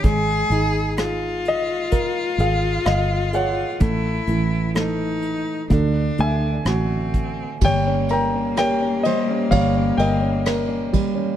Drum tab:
RD |--------|--------|xxxxxxxx|
HH |xxxxxxxx|xxxxxxxx|--------|
SD |--r---r-|--r---r-|--r---r-|
BD |o---o---|o---o--o|o---o--o|